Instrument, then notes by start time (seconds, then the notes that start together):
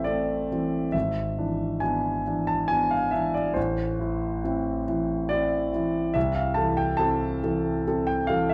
grand piano
Already playing: A1 E3 A3 C4 C5 E5
0.04 A3 C4 D5
0.51 E3 C4
0.92 G#1 E5
1.38 E3 D4
1.80 B3 D4 G#5
2.27 E3 D4
2.47 A5
2.68 B3 D4 G#5
2.91 F5
3.11 E3 D4 E5
3.34 D5
3.54 A1 C5
3.99 E3 E4
4.44 C4 E4
4.88 E3 E4
5.29 C4 E4 D5
5.73 E3 E4
6.14 C2 E5
6.35 F5
6.54 E3 A4 A5
6.77 G5
6.97 C4 A4 A5
7.44 E3 A4
7.87 C4 A4
8.07 G5
8.27 E3 A4 F5
8.49 E5